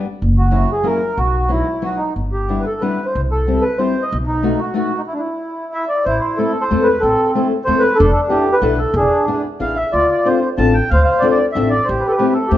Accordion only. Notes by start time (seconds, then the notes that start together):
0.38 F#4
0.72 G#4
0.86 A#4
1.17 F#4
1.50 E4
1.83 F#4
1.97 D#4
2.32 G4
2.60 B4
2.66 A4
2.81 B4
3.05 C5
3.31 A4
3.61 B4
3.78 C5
4.02 D#5
4.27 D#4
4.60 F#4
4.76 F#4
4.98 D#4
5.07 E4
5.14 D4
5.18 E4
5.74 E5
5.89 D5
6.05 E4 C5
6.20 C5
6.37 A4
6.61 C5
6.83 B4
7.00 C4 A4
7.65 C5
7.79 B4
7.95 D4 A4
8.13 A4
8.29 G4
8.52 B4
8.78 A4
8.96 D4 G#4
9.61 F5
9.76 E5
9.92 F4 D5
10.12 D5
10.26 C5
10.58 A5
10.74 G5
10.90 C5 F5
11.04 F5
11.20 D5
11.30 D5
11.52 E5
11.70 D5
11.85 C5
11.89 G4
12.00 B4
12.08 A4 B4
12.16 B4
12.33 A4
12.48 G4